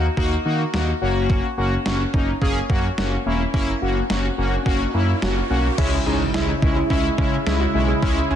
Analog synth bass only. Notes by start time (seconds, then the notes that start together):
0.17 D#2
0.45 D#3
0.73 D#2
1.02 F#1
1.58 F#1
1.86 F#1
2.14 F#1
2.42 F#1
2.70 F#2
2.98 F#1
3.26 E1
3.54 F#1
3.82 F#1
4.10 F#1
4.38 F#1
4.66 F#1
4.94 F#2
5.22 F#1
5.50 B1
5.78 C#2
6.06 C#2
6.34 C#2
6.62 C#2
6.90 C#2
7.18 C#3
7.46 C#2
7.74 B1
8.03 C#2
8.31 C#2